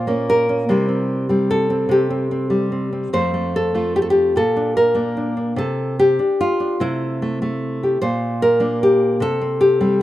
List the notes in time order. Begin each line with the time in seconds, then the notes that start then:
Already playing: A#2 F4 C5
0.07 A#3 C#4
0.30 A#4
0.49 C#4
0.69 C3 G3 C4 E4
0.89 C4
1.29 G3 C4
1.51 A4
1.70 C4
1.89 C3 G4
2.10 C4
2.31 C4
2.50 G3
2.72 C4
2.93 C4
3.13 F2 A3 C4 C5
3.34 A3
3.56 A4
3.74 A3 F4
3.96 G4
4.02 A4
4.10 G4
4.36 A#2 A4
4.56 D4
4.77 A#4
4.95 A#3 D4
5.17 D4
5.37 D4
5.56 C3 A4
5.99 G4
6.19 D4
6.41 F4
6.60 D4
6.80 C3 A3 E4
7.22 A3
7.42 A3
7.83 G4
8.02 A#2 C5
8.42 A#4
8.60 A#3 D4
8.83 G4
9.20 C3 A4
9.41 C4
9.61 G4
9.81 G3 C4